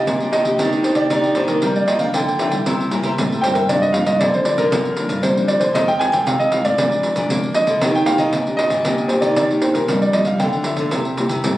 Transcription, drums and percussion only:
0.07 pandeiro
0.20 pandeiro
0.33 pandeiro
0.45 pandeiro
0.59 pandeiro
0.73 pandeiro
0.84 pandeiro
0.95 pandeiro
1.10 pandeiro
1.24 pandeiro
1.35 pandeiro
1.48 pandeiro
1.62 pandeiro
1.76 pandeiro
1.88 pandeiro
1.99 pandeiro
2.14 pandeiro
2.28 pandeiro
2.39 pandeiro
2.52 pandeiro
2.66 pandeiro
2.81 pandeiro
2.91 pandeiro
3.03 pandeiro
3.18 pandeiro
3.32 pandeiro
3.44 pandeiro
3.55 pandeiro
3.69 pandeiro
3.83 pandeiro
3.94 pandeiro
4.06 pandeiro
4.21 pandeiro
4.34 pandeiro
4.45 pandeiro
4.58 pandeiro
4.72 pandeiro
4.85 pandeiro
4.97 pandeiro
5.09 pandeiro
5.23 pandeiro
5.37 pandeiro
5.48 pandeiro
5.61 pandeiro
5.75 pandeiro
5.88 pandeiro
6.01 pandeiro
6.13 pandeiro
6.27 pandeiro
6.40 pandeiro
6.52 pandeiro
6.65 pandeiro
6.78 pandeiro
6.92 pandeiro
7.03 pandeiro
7.16 pandeiro
7.30 pandeiro
7.43 pandeiro
7.54 pandeiro
7.67 pandeiro
7.81 pandeiro
7.95 pandeiro
8.06 pandeiro
8.18 pandeiro
8.33 pandeiro
8.47 pandeiro
8.59 pandeiro
8.70 pandeiro
8.85 pandeiro
8.98 pandeiro
9.09 pandeiro
9.22 pandeiro
9.36 pandeiro
9.51 pandeiro
9.62 pandeiro
9.75 pandeiro
9.88 pandeiro
10.02 pandeiro
10.13 pandeiro
10.25 pandeiro
10.40 pandeiro
10.53 pandeiro
10.64 pandeiro
10.77 pandeiro
10.91 pandeiro
11.05 pandeiro
11.17 pandeiro
11.29 pandeiro
11.44 pandeiro

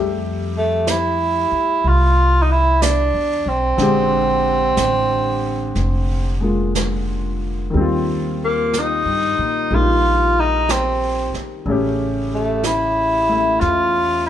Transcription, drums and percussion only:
0.87 brush sweep, snare, hi-hat pedal
1.84 brush sweep
2.82 brush sweep, snare, hi-hat pedal
3.78 brush sweep, snare
4.77 brush sweep, snare, hi-hat pedal
5.75 brush sweep, snare
6.75 brush sweep, snare, hi-hat pedal
7.74 brush sweep
8.73 brush sweep, snare, hi-hat pedal
9.72 brush sweep
10.69 brush sweep, snare, hi-hat pedal
11.34 snare
11.67 brush sweep
12.63 brush sweep, snare, hi-hat pedal
13.61 brush sweep, snare

